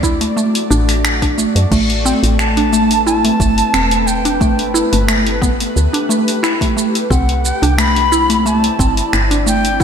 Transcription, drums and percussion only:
0.03 kick, shaker
0.21 open hi-hat, shaker
0.38 shaker
0.55 open hi-hat, shaker
0.72 shaker
0.89 finger snap, open hi-hat, shaker
1.05 finger snap, shaker
1.22 kick, open hi-hat, shaker
1.39 shaker
1.56 open hi-hat, shaker
1.72 kick, crash, shaker
1.90 open hi-hat
2.06 shaker
2.24 open hi-hat, shaker
2.39 finger snap, shaker
2.57 open hi-hat
2.74 shaker
2.91 open hi-hat, shaker
3.07 shaker
3.25 open hi-hat
3.40 kick, shaker
3.58 open hi-hat, shaker
3.74 finger snap, shaker
3.91 open hi-hat, shaker
4.08 shaker
4.25 open hi-hat, shaker
4.41 kick, shaker
4.59 open hi-hat
4.76 shaker
4.93 open hi-hat, shaker
5.08 finger snap, shaker
5.27 open hi-hat
5.42 kick, shaker
5.60 open hi-hat, shaker
5.77 shaker
5.94 open hi-hat
6.11 shaker
6.28 open hi-hat, shaker
6.44 finger snap, shaker
6.61 kick, open hi-hat, shaker
6.78 shaker
6.95 open hi-hat, shaker
7.11 kick, shaker
7.29 open hi-hat
7.45 shaker
7.63 open hi-hat, shaker
7.78 finger snap, shaker
7.96 open hi-hat
8.13 shaker
8.30 open hi-hat, shaker
8.47 shaker
8.64 open hi-hat
8.79 kick, shaker
8.97 open hi-hat, shaker
9.13 finger snap, shaker
9.31 open hi-hat, shaker
9.47 shaker
9.65 open hi-hat, shaker
9.80 kick

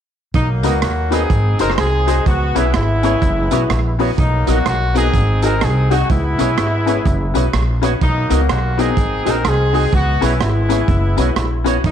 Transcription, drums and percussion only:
0.34 kick, closed hi-hat
0.63 closed hi-hat
0.82 cross-stick, closed hi-hat
1.12 closed hi-hat
1.30 kick, closed hi-hat
1.59 closed hi-hat
1.70 cross-stick
1.78 cross-stick, closed hi-hat
2.08 closed hi-hat
2.26 kick, closed hi-hat
2.56 closed hi-hat
2.74 cross-stick, closed hi-hat
3.03 closed hi-hat
3.22 kick, closed hi-hat
3.51 closed hi-hat
3.70 cross-stick, closed hi-hat
3.99 open hi-hat
4.18 kick, closed hi-hat
4.47 closed hi-hat
4.66 cross-stick, closed hi-hat
4.96 closed hi-hat
5.14 kick, closed hi-hat
5.42 closed hi-hat
5.61 cross-stick, closed hi-hat
5.91 closed hi-hat
6.10 kick, closed hi-hat
6.39 closed hi-hat
6.58 cross-stick, closed hi-hat
6.87 closed hi-hat
7.06 kick, closed hi-hat
7.35 closed hi-hat
7.53 cross-stick, closed hi-hat
7.83 closed hi-hat
8.01 kick, closed hi-hat
8.30 closed hi-hat
8.49 cross-stick, closed hi-hat
8.79 closed hi-hat
8.97 kick, closed hi-hat
9.26 closed hi-hat
9.45 cross-stick, closed hi-hat
9.74 open hi-hat
9.93 kick, closed hi-hat
10.22 closed hi-hat
10.40 cross-stick, closed hi-hat
10.70 closed hi-hat
10.88 kick, closed hi-hat
11.18 closed hi-hat
11.36 cross-stick, closed hi-hat
11.66 closed hi-hat
11.84 kick, closed hi-hat

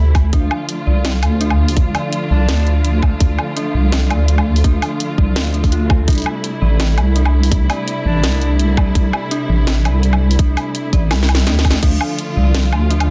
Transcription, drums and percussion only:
0.15 kick, open hi-hat, low woodblock
0.33 kick, closed hi-hat
0.51 low woodblock
0.69 closed hi-hat
1.05 snare, closed hi-hat
1.23 closed hi-hat, low woodblock
1.41 closed hi-hat
1.50 low woodblock
1.68 open hi-hat
1.77 kick, closed hi-hat
1.95 open hi-hat, low woodblock
2.13 closed hi-hat
2.49 snare, closed hi-hat
2.67 closed hi-hat
2.85 closed hi-hat
3.03 kick, low woodblock
3.20 kick, closed hi-hat
3.39 low woodblock
3.57 closed hi-hat
3.92 snare, closed hi-hat
4.10 closed hi-hat, low woodblock
4.28 closed hi-hat
4.38 low woodblock
4.56 open hi-hat
4.64 kick, closed hi-hat
4.82 open hi-hat, low woodblock
5.00 closed hi-hat
5.18 kick
5.36 snare, open hi-hat
5.54 closed hi-hat
5.64 kick, open hi-hat
5.72 closed hi-hat
5.90 kick, low woodblock
6.08 kick, closed hi-hat
6.10 closed hi-hat
6.13 closed hi-hat
6.15 closed hi-hat
6.18 closed hi-hat
6.20 closed hi-hat
6.22 closed hi-hat
6.24 closed hi-hat, low woodblock
6.44 closed hi-hat
6.80 snare, closed hi-hat
6.98 closed hi-hat, low woodblock
7.16 closed hi-hat
7.25 low woodblock
7.43 open hi-hat
7.52 kick, closed hi-hat
7.70 open hi-hat, low woodblock
7.88 closed hi-hat
8.24 snare, closed hi-hat
8.41 closed hi-hat
8.59 closed hi-hat
8.77 kick, low woodblock
8.95 kick, closed hi-hat
9.13 low woodblock
9.31 closed hi-hat
9.67 snare, closed hi-hat
9.85 closed hi-hat, low woodblock
10.03 closed hi-hat
10.13 low woodblock
10.31 open hi-hat
10.39 kick, closed hi-hat
10.57 open hi-hat, low woodblock
10.75 closed hi-hat
10.93 kick, closed hi-hat
11.11 snare, open hi-hat, low woodblock
11.23 snare
11.29 closed hi-hat, low woodblock
11.35 snare, open hi-hat
11.47 snare, closed hi-hat
11.59 snare
11.65 kick, open hi-hat, low woodblock
11.71 snare
11.83 kick, closed hi-hat, crash
12.01 low woodblock
12.19 closed hi-hat
12.55 snare, closed hi-hat
12.72 low woodblock
12.91 closed hi-hat
13.00 closed hi-hat, low woodblock

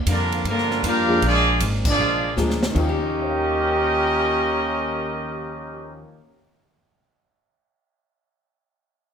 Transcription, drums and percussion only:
0.07 hi-hat pedal, ride
0.32 ride
0.45 ride
0.58 snare
0.71 snare
0.84 hi-hat pedal, ride
1.22 ride
1.60 hi-hat pedal, ride
1.85 kick, crash
2.37 snare, hi-hat pedal
2.50 snare
2.63 snare
2.75 kick, crash

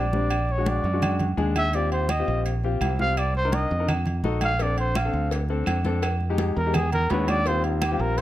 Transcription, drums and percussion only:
0.13 high conga
0.30 high conga, low agogo, claves
0.49 high conga
0.66 high conga, low agogo
0.84 high conga
1.02 high conga, low conga, low agogo, claves
1.19 high conga, low conga, low agogo
1.38 high conga
1.56 high conga, low agogo, claves
1.73 high conga, low agogo
1.92 high conga, low agogo
2.09 high conga, low agogo, claves
2.27 high conga
2.46 high conga, low agogo
2.64 high conga
2.81 high conga, low agogo, claves
2.99 high conga
3.17 high conga, low agogo, claves
3.35 high conga
3.52 high conga, low agogo
3.71 high conga
3.88 high conga, low conga, low agogo, claves
4.06 high conga, low conga, low agogo
4.24 high conga
4.41 high conga, low agogo, claves
4.59 cowbell, high conga, low agogo
4.77 high conga, low agogo
4.95 cowbell, high conga, low agogo, claves
5.13 high conga
5.31 cowbell, high conga, low agogo
5.49 high conga
5.66 cowbell, high conga, low agogo, claves
5.85 cowbell, high conga
6.02 cowbell, high conga, low agogo, claves
6.20 high conga
6.38 cowbell, high conga, low agogo
6.57 high conga
6.74 cowbell, high conga, low conga, low agogo, claves
6.92 high conga, low conga, low agogo
7.10 cowbell, high conga, low timbale
7.28 high conga, low agogo, claves
7.46 cowbell, high conga, low agogo
7.64 high conga, low agogo
7.82 cowbell, high conga, low agogo, claves
8.00 high conga
8.18 cowbell, high conga, low agogo

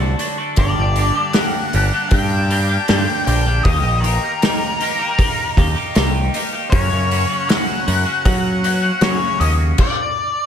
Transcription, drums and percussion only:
0.19 open hi-hat
0.56 kick, open hi-hat
0.96 open hi-hat
1.33 snare, open hi-hat
1.73 open hi-hat
2.11 kick, open hi-hat
2.51 open hi-hat
2.88 snare, open hi-hat
3.27 open hi-hat
3.65 kick, open hi-hat
4.04 open hi-hat
4.42 snare, open hi-hat
4.81 open hi-hat
5.19 kick, open hi-hat
5.57 kick, open hi-hat
5.95 snare, open hi-hat
6.34 open hi-hat
6.72 kick, open hi-hat
7.11 open hi-hat
7.49 snare, open hi-hat
7.88 open hi-hat
8.25 kick, open hi-hat
8.64 open hi-hat
9.01 snare, open hi-hat
9.41 open hi-hat
9.78 kick, crash

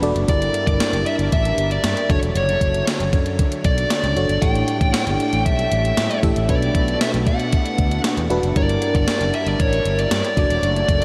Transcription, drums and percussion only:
0.03 closed hi-hat
0.16 closed hi-hat
0.28 kick, closed hi-hat
0.42 closed hi-hat
0.54 closed hi-hat
0.67 kick, closed hi-hat
0.80 snare, closed hi-hat
0.93 closed hi-hat
1.06 closed hi-hat
1.19 closed hi-hat
1.32 kick, closed hi-hat
1.45 closed hi-hat
1.58 closed hi-hat
1.71 closed hi-hat
1.84 snare, closed hi-hat
1.97 closed hi-hat
2.10 kick, closed hi-hat
2.23 closed hi-hat
2.36 closed hi-hat
2.49 closed hi-hat
2.61 kick, closed hi-hat
2.74 closed hi-hat
2.87 snare, closed hi-hat
3.00 closed hi-hat
3.13 kick, closed hi-hat
3.26 closed hi-hat
3.39 kick, closed hi-hat
3.52 closed hi-hat
3.64 kick, closed hi-hat
3.78 closed hi-hat
3.90 snare, closed hi-hat
4.04 closed hi-hat
4.17 closed hi-hat
4.29 closed hi-hat
4.42 kick, closed hi-hat
4.55 closed hi-hat
4.68 closed hi-hat
4.81 kick, closed hi-hat
4.94 snare, closed hi-hat
5.07 closed hi-hat
5.20 closed hi-hat
5.33 closed hi-hat
5.46 kick, closed hi-hat
5.59 closed hi-hat
5.72 closed hi-hat
5.85 closed hi-hat
5.97 snare, closed hi-hat
6.11 closed hi-hat
6.23 kick, closed hi-hat
6.36 closed hi-hat
6.49 kick, closed hi-hat
6.62 closed hi-hat
6.75 kick, closed hi-hat
6.88 closed hi-hat
7.01 snare, closed hi-hat
7.14 closed hi-hat
7.27 kick, closed hi-hat
7.40 closed hi-hat
7.53 kick, closed hi-hat
7.66 closed hi-hat
7.78 kick, closed hi-hat
7.91 closed hi-hat
8.04 snare, closed hi-hat
8.17 closed hi-hat
8.30 closed hi-hat
8.43 closed hi-hat
8.56 kick, closed hi-hat
8.69 closed hi-hat
8.82 closed hi-hat
8.95 kick, closed hi-hat
9.08 snare, closed hi-hat
9.21 closed hi-hat
9.34 closed hi-hat
9.47 closed hi-hat
9.60 kick, closed hi-hat
9.73 closed hi-hat
9.85 closed hi-hat
9.99 closed hi-hat
10.11 snare, closed hi-hat
10.25 closed hi-hat
10.37 kick, closed hi-hat
10.50 closed hi-hat
10.63 closed hi-hat
10.76 closed hi-hat
10.89 kick, closed hi-hat

